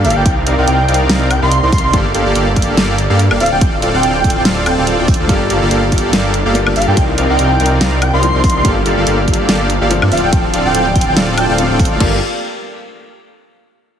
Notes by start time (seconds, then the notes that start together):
0.04 G1 A#3 G4 A4 D5 F5, open hi-hat
0.10 closed hi-hat
0.16 G1 A#3 G4 A4 D5 F5 G5
0.25 C2 C4 D#4 A#4 D5 F5 G5, kick, closed hi-hat
0.47 C2 C4 D#4 A#4 D5 F5, closed hi-hat
0.58 C2 C4 D#4 A#4 D5 F5 G5
0.67 C2 C4 D#4 A#4 D5 F5, closed hi-hat
0.88 C2 C4 D#4 A#4 D5 F5, closed hi-hat
0.94 closed hi-hat
1.09 C2 C4 D#4 A#4 D5 F5, snare, closed hi-hat
1.30 G5, closed hi-hat, high woodblock
1.42 C2 C4 D#4 A#4 D5 F5 C6
1.51 closed hi-hat
1.63 C2 C4 D#4 A#4 D5 F5
1.72 C2 C4 D#4 A#4 D5 F5 C6, kick, open hi-hat
1.78 closed hi-hat
1.84 C2 C4 D#4 A#4 D5 F5
1.93 G1 A#3 G4 A4 D5 F5, kick, closed hi-hat
2.14 G1 A#3 G4 A4 D5 F5, closed hi-hat
2.26 G1 A#3 G4 A4 D5 F5
2.35 G1 A#3 G4 A4 D5 F5, closed hi-hat
2.56 G1 A#3 G4 A4 D5 F5, kick, closed hi-hat
2.62 closed hi-hat
2.77 G1 A#3 G4 A4 D5 F5, snare, closed hi-hat
2.98 closed hi-hat
3.10 G2 A#3 G4 A4 D5 F5
3.19 closed hi-hat
3.31 G1 A#3 G4 A4 D5 F5, high woodblock
3.40 D1 C4 F4 A4 D5 F5, open hi-hat
3.46 closed hi-hat
3.52 D1 C4 F4 A4 D5 F5 G5
3.61 D1 C4 F4 A4 D5 F5 G5, kick, closed hi-hat
3.82 D1 C4 F4 A4 D5 F5, closed hi-hat
3.94 D1 C4 F4 A4 D5 F5 G5
4.03 D1 C4 F4 A4 D5 F5, closed hi-hat
4.24 D1 C4 F4 A4 D5 F5 G5, kick, closed hi-hat
4.30 closed hi-hat
4.36 G5
4.45 D1 C4 F4 A4 D5 F5, snare, closed hi-hat
4.66 D1 C4 F4 A4 D5 G5 A5, closed hi-hat, high woodblock
4.78 D1 C4 F4 A4 D5 F5 G5
4.87 closed hi-hat
4.99 D1 C4 F4 A4 D5 G5
5.08 kick, open hi-hat
5.14 closed hi-hat
5.20 D2 C4 F4 A4 D5 F5
5.27 G1 G3 A#3 D4 F4 G4 A4 D5 F5, kick, closed hi-hat, ride
5.31 A4
5.50 G1 A#3 G4 A4 D5 F5, closed hi-hat
5.62 G1 A#3 G4 A4 D5 F5
5.71 G1 A#3 G4 A4 D5 F5, closed hi-hat
5.92 G1 A#3 G4 A4 D5 F5, kick, closed hi-hat
5.98 closed hi-hat
6.13 G1 A#3 G4 A4 D5 F5, snare, closed hi-hat, ride
6.34 closed hi-hat
6.46 G1 A#3 G4 A4 D5 F5
6.54 G3 A#3 D4 F4 A4, closed hi-hat
6.67 G1 A#3 G4 A4 D5 F5, high woodblock
6.76 G1 A#3 G4 A4 D5 F5, open hi-hat
6.82 closed hi-hat
6.88 G2 A#3 G4 A4 D5 F5 G5
6.95 C2 F3 C4 D4 D#4 A#4 D5 F5 G5, kick, closed hi-hat, ride
6.99 A#4
7.18 C2 C4 D#4 A#4 D5 F5, closed hi-hat
7.29 C2 C4 D#4 A#4 D5 F5 G5
7.39 C2 C4 D#4 A#4 D5 F5, closed hi-hat
7.60 C2 C4 D#4 A#4 D5 F5, closed hi-hat
7.66 closed hi-hat
7.81 C2 C4 D#4 A#4 D5 F5, snare, closed hi-hat, ride
8.02 G5, closed hi-hat, high woodblock
8.13 C2 C4 D#4 A#4 D5 F5 C6
8.22 F3 C4 D4 D#4 A#4, closed hi-hat
8.34 C2 C4 D#4 A#4 D5 F5
8.43 C2 C4 D#4 A#4 D5 F5 C6, kick, open hi-hat
8.50 closed hi-hat
8.55 C2 C4 D#4 A#4 D5 F5
8.63 G1 G3 A#3 D4 F4 G4 A4 D5 F5, kick, closed hi-hat, ride
8.67 A4
8.86 G1 A#3 G4 A4 D5 F5, closed hi-hat
8.97 G1 A#3 G4 A4 D5 F5
9.07 G1 A#3 G4 A4 D5 F5, closed hi-hat
9.28 G1 A#3 G4 A4 D5 F5, kick, closed hi-hat
9.34 closed hi-hat
9.49 G1 A#3 G4 A4 D5 F5, snare, closed hi-hat, ride
9.70 closed hi-hat
9.81 G1 A#3 G4 A4 D5 F5
9.89 F3 A3 C4 D4 A4, closed hi-hat
10.02 G2 A#3 G4 A4 D5 F5, high woodblock
10.12 D1 C4 F4 A4 D5 F5, open hi-hat
10.17 closed hi-hat
10.23 D1 C4 F4 A4 D5 F5 G5
10.31 D1 F3 A3 C4 D4 F4 A4 D5 F5 G5, kick, closed hi-hat, ride
10.35 A4
10.54 D1 C4 F4 A4 D5 F5, closed hi-hat
10.65 D1 C4 F4 A4 D5 F5 G5
10.75 D1 C4 F4 A4 D5 F5, closed hi-hat
10.96 D1 C4 F4 A4 D5 F5 G5, kick, closed hi-hat
11.01 closed hi-hat
11.07 G5
11.17 D1 C4 F4 A4 D5 F5, snare, closed hi-hat, ride
11.37 D1 C4 F4 A4 D5 G5 A5, closed hi-hat, high woodblock
11.49 D1 C4 F4 A4 D5 F5 G5
11.58 F3 A3 C4 D4 A4, closed hi-hat
11.70 D1 C4 F4 A4 D5 G5
11.79 kick, open hi-hat
11.85 closed hi-hat
11.91 D1 C4 F4 A4 D5 F5
11.98 G1 G3 A#3 D4 G4 A4 D5 F5, kick, crash
12.02 F4 A4